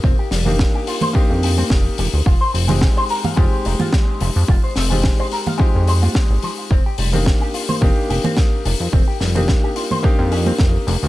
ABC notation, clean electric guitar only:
X:1
M:4/4
L:1/16
Q:"Swing 16ths" 1/4=108
K:Fdor
V:1 name="Clean electric guitar"
C G G, C z G F c C z G C z2 C, z | F c C F z c B f F z c F z2 F, z | F c C F z c B f F z c F z2 F, z | C G G, C z G F c C z G C z2 C, z |
C G G, C z G F c C z G C z2 C, z |]